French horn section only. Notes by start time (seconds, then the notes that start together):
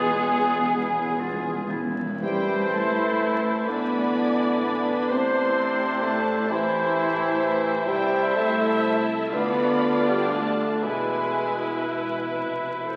Already playing: G#3
2.22 G3
2.74 A3
3.69 B3
4.64 B3
5.11 C4
6.03 A3
6.50 E3
7.88 G3
8.36 A3
9.33 B3
10.08 G3
10.34 A3
10.86 G#3